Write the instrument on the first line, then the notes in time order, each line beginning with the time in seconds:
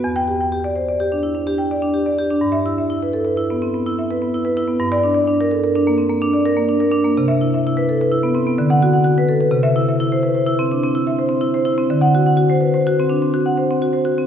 marimba
0.04 E2
0.16 G5
0.28 G4
0.41 G5
0.52 G4
0.64 D5
0.76 C5
0.89 D5
1.00 G4
1.12 D4
1.23 E4
1.35 D4
1.47 G4
1.58 G5
1.71 D5
1.82 D4
1.94 G4
2.06 D5
2.18 G4
2.30 D4
2.41 G2
2.52 E5
2.66 E4
2.78 E5
2.90 E4
3.03 B4
3.13 A4
3.25 B4
3.37 E4
3.50 B3
3.62 C4
3.74 B3
3.86 E4
3.99 E5
4.11 B4
4.22 B3
4.34 E4
4.45 B4
4.57 E4
4.68 B3
4.80 G2
4.92 D5
5.04 D4
5.14 D5
5.27 D4
5.41 A#4
5.51 A4
5.64 A#4
5.75 D4
5.87 A#3
5.98 C4
6.10 A#3
6.22 D4
6.33 D5
6.46 A#4
6.57 A#3
6.69 D4
6.80 A#4
6.92 D4
7.04 A#3
7.17 C3
7.28 E5
7.41 E4
7.54 E5
7.67 E4
7.77 B4
7.89 A4
8.01 B4
8.12 E4
8.23 B3
8.35 C4
8.47 B3
8.58 D3
8.70 F#5
8.82 F#4
8.93 F#5
9.04 F#4
9.18 B4
9.29 A4
9.41 B4
9.51 C3
9.63 E5
9.76 E4
9.88 E5
10.00 E4
10.12 C5
10.23 B4
10.35 C5
10.47 E4
10.59 C4
10.72 D4
10.83 C4
10.95 E4
11.07 E5
11.19 C5
11.29 C4
11.41 E4
11.54 C5
11.65 E4
11.78 C4
11.90 D3
12.01 F#5
12.15 F#4
12.26 F#5
12.37 F#4
12.50 C5
12.61 B4
12.74 C5
12.87 F#4
13.00 C4
13.10 D4
13.22 C4
13.34 F#4
13.46 F#5
13.57 C5
13.71 C4
13.82 F#4
13.93 C5
14.05 F#4
14.18 C4